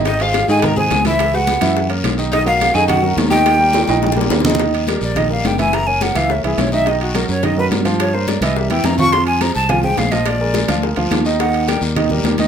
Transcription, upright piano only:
0.06 0.18 D#3 medium
0.06 0.18 D#4 medium
0.06 0.18 D#5 medium
0.21 0.44 G#3 medium
0.21 0.44 G#4 medium
0.21 0.44 C5 medium
0.49 0.72 D#3 medium
0.49 0.72 D#4 medium
0.49 0.72 D#5 medium
0.77 1.00 G#3 medium
0.77 1.00 G#4 medium
0.77 1.00 C5 medium
1.06 1.29 E3 medium
1.06 1.29 E4 medium
1.06 1.29 E5 medium
1.33 1.57 G#3 medium
1.33 1.57 G#4 medium
1.33 1.57 B4 medium
1.61 1.85 E3 medium
1.61 1.85 E4 medium
1.61 1.85 E5 medium
1.90 2.13 A#3 medium
1.90 2.13 A#4 medium
1.90 2.13 C#5 medium
2.18 2.29 D#3 medium
2.18 2.30 D#4 medium
2.18 2.30 D#5 medium
2.32 2.44 D#3 medium
2.32 2.44 D#4 medium
2.32 2.44 D#5 medium
2.45 2.69 F#3 medium
2.45 2.69 F#4 medium
2.45 2.70 A#4 medium
2.74 2.98 D#3 medium
2.74 2.98 D#4 medium
2.74 2.98 D#5 medium
3.03 3.26 F#3 medium
3.03 3.26 F#4 medium
3.03 3.27 A#4 medium
3.31 3.54 D#3 medium
3.31 3.55 D#4 medium
3.31 3.55 D#5 medium
3.59 3.83 G3 medium
3.59 3.83 G4 medium
3.59 3.83 A#4 medium
3.88 4.11 D#3 medium
3.88 4.12 D#4 medium
3.88 4.12 D#5 medium
4.16 4.40 G3 medium
4.16 4.40 G4 medium
4.16 4.40 A#4 medium
4.45 4.57 D#3 medium
4.45 4.57 D#4 medium
4.45 4.57 D#5 medium
4.58 4.82 D#3 medium
4.58 4.82 D#4 medium
4.58 4.83 D#5 medium
4.88 5.11 G3 medium
4.88 5.11 G4 medium
4.88 5.11 A#4 medium
5.16 5.28 D#3 medium
5.16 5.28 D#4 medium
5.16 5.28 D#5 medium
5.30 5.53 G3 medium
5.30 5.54 G4 medium
5.30 5.54 A#4 medium
5.59 5.82 E3 medium
5.59 5.82 E4 medium
5.59 5.82 E5 medium
5.87 6.10 A#3 medium
5.87 6.10 A#4 medium
5.87 6.11 C#5 medium
6.15 6.27 E3 medium
6.15 6.27 E4 medium
6.15 6.27 E5 medium
6.30 6.42 A#3 medium
6.30 6.42 A#4 medium
6.30 6.42 C#5 medium
6.44 6.67 E3 medium
6.44 6.67 E4 medium
6.44 6.68 E5 medium
6.72 6.84 D#3 medium
6.72 6.84 D#4 medium
6.72 6.84 D#5 medium
6.86 7.09 D#3 medium
6.86 7.10 D#4 medium
6.86 7.10 D#5 medium
7.15 7.38 F#3 medium
7.15 7.38 F#4 medium
7.15 7.38 A#4 medium
7.43 7.55 D#3 medium
7.43 7.55 D#4 medium
7.43 7.55 D#5 medium
7.57 7.81 F#3 medium
7.57 7.81 F#4 medium
7.57 7.81 A#4 medium
7.85 8.09 F3 medium
7.85 8.09 F4 medium
7.85 8.09 F5 medium
8.14 8.37 A#3 medium
8.14 8.37 A#4 medium
8.14 8.37 C#5 medium
8.42 8.54 E3 medium
8.42 8.54 E4 medium
8.42 8.54 E5 medium
8.56 8.68 G3 medium
8.56 8.68 G4 medium
8.56 8.68 A#4 medium
8.70 8.93 E3 medium
8.70 8.94 E4 medium
8.70 8.94 E5 medium
8.99 9.11 F3 medium
8.99 9.11 F4 medium
8.99 9.11 F5 medium
9.13 9.37 F3 medium
9.13 9.37 F4 medium
9.41 9.65 G#3 medium
9.41 9.65 G#4 medium
9.41 9.65 C5 medium
9.69 9.81 F3 medium
9.69 9.81 F4 medium
9.69 9.81 F5 medium
9.83 10.07 G#3 medium
9.83 10.07 G#4 medium
9.83 10.07 C5 medium
10.12 10.35 F3 medium
10.12 10.36 F4 medium
10.12 10.36 F5 medium
10.40 10.64 G#3 medium
10.40 10.64 G#4 medium
10.40 10.64 A#4 medium
10.68 10.80 F3 medium
10.68 10.80 F4 medium
10.68 10.80 F5 medium
10.82 10.94 G#3 medium
10.82 10.94 G#4 medium
10.82 10.94 A#4 medium
10.97 11.20 F3 medium
10.97 11.20 F4 medium
10.97 11.20 F5 medium
11.25 11.37 D#3 medium
11.25 11.37 D#4 medium
11.25 11.37 D#5 medium
11.40 11.63 D#3 medium
11.40 11.63 D#4 medium
11.40 11.63 D#5 medium
11.67 11.91 G3 medium
11.67 11.91 G4 medium
11.67 11.91 A#4 medium
11.96 12.08 D#3 medium
11.96 12.08 D#4 medium
11.96 12.08 D#5 medium
12.11 12.33 G3 medium
12.11 12.34 G4 medium
12.11 12.34 A#4 medium
12.39 12.48 D#3 medium
12.39 12.48 D#4 medium
12.39 12.48 D#5 medium

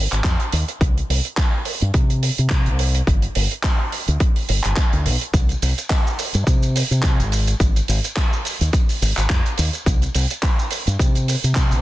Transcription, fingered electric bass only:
0.12 0.20 G#1 medium
0.24 0.34 F2 medium
0.53 0.63 D#2 medium
0.81 1.00 C2 medium
1.09 1.19 C2 medium
1.82 1.90 G2 medium
1.94 2.29 C3 medium
2.39 2.68 C3 medium
2.67 3.00 C2 medium
3.07 3.26 G1 loud
3.36 3.46 G1 medium
4.08 4.16 D2 medium
4.49 4.59 G1 medium
4.65 4.73 G1 medium
4.93 5.07 D2 medium
5.06 5.16 B1 medium
5.34 5.53 C2 loud
5.62 5.72 C2 loud
6.34 6.42 G2 medium
6.47 6.82 C3 medium
6.91 7.21 C3 medium
7.19 7.53 G#1 medium
7.60 7.79 G#1 medium
7.89 7.99 G#1 loud
8.61 8.69 D#2 medium
9.02 9.12 G#1 medium
9.17 9.25 G#1 medium
9.30 9.40 F2 medium
9.59 9.68 D#2 medium
9.86 10.06 C2 loud
10.15 10.25 C2 loud
10.87 10.95 G2 medium
11.00 11.35 C3 loud
11.44 11.74 C3 medium
11.72 11.81 C2 medium

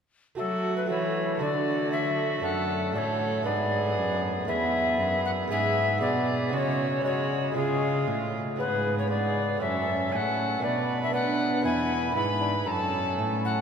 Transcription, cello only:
0.39 0.91 F#3 medium
0.90 1.42 E3 medium
1.41 2.43 D3 medium
2.43 2.96 F#2 medium
2.95 3.47 A2 medium
3.46 3.99 G#2 medium
3.97 4.48 F#2 medium
4.48 5.01 E2 medium
4.99 5.49 F#2 medium
5.50 6.03 G#2 medium
6.01 6.54 B2 medium
6.52 7.55 C#3 medium
7.55 8.09 C#3 medium
8.07 8.39 A2 medium
8.59 9.58 G#2 medium
9.62 10.14 F#2 medium
10.13 10.63 A2 medium
10.64 11.67 B2 medium
11.65 12.18 E2 medium
12.16 12.67 G#2 medium
12.67 13.20 F#2 medium
13.18 13.61 A2 medium

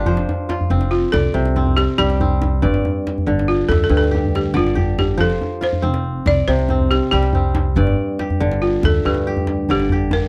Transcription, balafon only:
0.91 1.00 F4 medium
1.12 1.52 A4 loud
1.77 1.86 G4 medium
1.98 2.43 G4 medium
3.48 3.70 F4 medium
3.69 3.82 A4 loud
3.84 3.96 A4 medium
3.97 4.11 A4 loud
4.36 4.57 G4 medium
4.57 5.00 F4 medium
4.99 5.20 G4 medium
5.21 5.64 A4 medium
5.64 6.29 C5 medium
6.27 6.37 D5 loud
6.48 6.92 C5 loud
6.91 7.00 G4 medium
7.11 7.57 G4 medium
8.62 8.85 F4 medium
8.85 9.07 A4 loud
9.06 9.70 G4 medium
9.71 10.15 G4 medium
10.13 10.28 A#4 medium

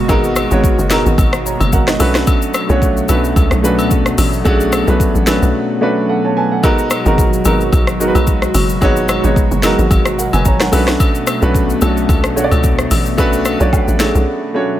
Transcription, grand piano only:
0.00 0.08 G#3 medium
0.00 0.09 B3 medium
0.00 0.09 D#4 medium
0.00 0.10 F#4 medium
0.00 0.10 A#4 loud
0.00 2.01 B4 loud
0.00 0.53 C#5 medium
0.08 0.42 G#3 loud
0.08 0.42 B3 loud
0.08 0.42 D#4 loud
0.08 0.43 F#4 loud
0.08 0.43 A#4 loud
0.51 0.83 G#3 medium
0.51 0.83 B3 medium
0.51 0.84 D#4 medium
0.51 0.84 F#4 medium
0.51 0.84 C#5 loud
0.90 1.35 G#3 medium
0.90 1.35 B3 medium
0.90 1.36 D#4 medium
0.90 1.18 F#4 medium
0.90 1.19 A#4 medium
1.45 1.72 C#5 medium
1.45 1.71 A#5 medium
1.73 1.87 A#4 medium
1.73 1.87 F#5 medium
1.88 1.99 F#4 medium
1.88 2.14 D#5 medium
1.99 2.54 A3 medium
1.99 2.54 C#4 medium
1.99 2.55 D4 medium
1.99 2.55 F#4 medium
1.99 2.55 B4 loud
2.69 3.01 A3 medium
2.69 3.02 C#4 medium
2.69 3.02 D4 medium
2.69 3.02 F#4 medium
2.69 3.02 C#5 loud
3.08 3.53 A3 medium
3.08 3.54 C#4 medium
3.08 3.54 D4 medium
3.08 3.54 F#4 medium
3.08 3.54 B4 medium
3.63 4.30 A3 medium
3.63 4.30 C#4 medium
3.63 4.30 D4 medium
3.63 4.30 F#4 medium
3.63 4.31 B4 loud
4.44 4.78 A3 loud
4.44 4.79 C#4 loud
4.44 4.79 D4 loud
4.44 4.79 F#4 loud
4.44 4.79 G#4 loud
4.87 5.19 A3 medium
4.87 5.20 C#4 medium
4.87 5.20 D4 medium
4.87 5.20 F#4 medium
4.87 5.20 B4 loud
5.26 5.72 A3 medium
5.26 5.72 C#4 medium
5.26 5.72 D4 medium
5.26 5.72 F#4 medium
5.26 5.72 B4 medium
5.81 6.48 A3 medium
5.81 6.48 C#4 medium
5.81 6.48 D4 medium
5.81 6.49 F#4 medium
5.81 6.10 B4 loud
5.81 6.07 D5 medium
6.09 6.24 A4 medium
6.09 6.35 F#5 medium
6.24 6.36 C#5 medium
6.24 6.35 A5 medium
6.37 6.51 B4 medium
6.37 6.51 G#5 medium
6.37 6.62 A5 medium
6.52 6.78 A4 medium
6.52 6.77 F#5 medium
6.63 6.97 G#3 loud
6.63 6.97 B3 loud
6.63 6.97 D#4 loud
6.63 6.97 F#4 loud
6.63 6.97 A#4 loud
7.05 7.38 G#3 medium
7.05 7.38 B3 medium
7.05 7.38 D#4 medium
7.05 7.38 F#4 medium
7.05 7.39 A#4 loud
7.45 7.90 G#3 medium
7.45 7.90 B3 medium
7.45 7.90 D#4 medium
7.45 7.91 F#4 medium
7.45 7.91 A#4 medium
7.99 8.66 G#3 medium
7.99 8.66 B3 medium
7.99 8.67 D#4 medium
7.99 8.67 F#4 medium
7.99 8.08 A#4 medium
8.08 8.70 B4 medium
8.81 9.15 G#3 loud
8.81 9.15 B3 loud
8.81 9.15 D#4 loud
8.81 9.15 F#4 loud
8.81 9.16 C#5 loud
9.23 9.56 G#3 medium
9.23 9.56 B3 medium
9.23 9.56 D#4 medium
9.23 9.57 F#4 medium
9.23 9.57 C#5 medium
9.63 10.08 G#3 medium
9.63 10.08 B3 medium
9.63 10.09 D#4 medium
9.63 10.09 F#4 medium
9.63 10.09 A#4 medium
10.18 10.33 A#4 medium
10.18 10.33 F#5 medium
10.33 10.45 B4 medium
10.33 10.45 G#5 medium
10.46 10.60 C#5 medium
10.46 10.60 A#5 medium
10.61 10.87 A#4 medium
10.61 10.87 F#5 medium
10.72 11.27 A3 medium
10.72 11.27 C#4 medium
10.72 11.27 D4 medium
10.72 11.28 F#4 medium
10.72 11.28 B4 loud
11.42 11.74 A3 medium
11.42 11.74 C#4 medium
11.42 11.75 D4 medium
11.42 11.75 F#4 medium
11.42 11.75 B4 loud
11.81 12.26 A3 medium
11.81 12.26 C#4 medium
11.81 12.27 D4 medium
11.81 12.27 F#4 medium
11.81 12.27 A4 medium
12.36 13.03 A3 medium
12.36 13.03 D4 medium
12.36 13.03 F#4 medium
12.36 12.44 C#5 medium
12.44 13.07 D5 medium
13.18 13.51 A3 loud
13.18 13.51 C#4 loud
13.18 13.52 D4 loud
13.18 13.52 F#4 loud
13.18 13.52 B4 loud
13.60 13.92 A3 medium
13.60 13.93 D4 medium
13.60 13.93 F#4 medium
13.60 13.92 C#5 medium
13.60 13.93 D5 medium
13.99 14.44 A3 medium
13.99 14.45 C#4 medium
13.99 14.45 D4 medium
13.99 14.45 F#4 medium
13.99 14.45 G#4 medium
14.54 14.80 A3 medium
14.54 14.80 C#4 medium
14.54 14.80 D4 medium
14.54 14.80 F#4 medium
14.54 14.80 C#5 medium

